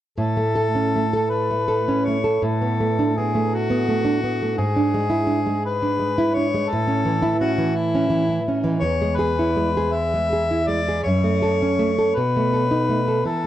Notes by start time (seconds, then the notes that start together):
0.18 A2 A4
0.37 A3
0.55 A4
0.75 C#4
0.96 A3
1.13 A4
1.30 B4
1.51 A3
1.68 A4
1.88 C#4
2.05 A3 C#5
2.24 A4
2.42 A2 A4
2.62 B3
2.80 A3
2.99 D4
3.17 B3 G#4
3.35 A3
3.54 F#4
3.70 B3
3.89 A3
4.05 D4
4.24 B3
4.42 A3
4.58 G#2 G#4
4.76 D4
4.94 G#3
5.10 E4
5.27 D4
5.47 G#3
5.65 B4
5.82 D4
5.99 G#3
6.18 E4
6.35 D4 C#5
6.54 G#3
6.70 A2 A4
6.88 C#4
7.05 E3
7.22 E4
7.40 C#4 F#4
7.58 E3
7.75 E4
7.95 C#4
8.10 E3
8.29 E4
8.48 C#4
8.64 E3
8.79 E2 C#5
9.02 G#3
9.16 G#4 B4
9.39 E4
9.57 G#3
9.77 G#4
9.93 E5
10.14 G#3
10.33 G#4
10.51 E4
10.67 G#3 D5
10.88 G#4
11.04 F#2 C#5
11.24 A3
11.42 A4
11.62 C#4
11.79 A3
11.99 A4
12.15 B2 B4
12.37 A3
12.53 A4
12.71 D#4
12.89 A3
13.08 A4
13.25 E3 A4